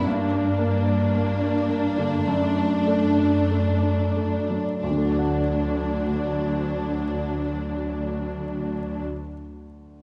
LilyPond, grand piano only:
\new Staff \with { instrumentName = "Grand piano" } { \time 4/4 \key d \major \tempo 4 = 46 g,16 d'16 bes16 d''16 bes16 d'16 bes16 d16 fis,16 d'16 a16 d''16 a16 d'16 a16 fis16 | <d, d a fis' d'' fis''>1 | }